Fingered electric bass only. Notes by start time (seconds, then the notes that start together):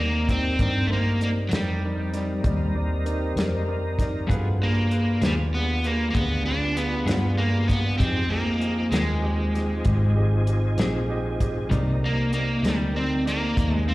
Already playing: D#2
0.59 G2
1.52 F2
2.44 D#2
3.36 F2
4.30 G2
5.22 D#2
6.15 D2
7.06 G2
8.00 F2
8.92 D#2
9.86 G#1
10.78 A#1
11.71 C2
12.63 D2
13.57 D#2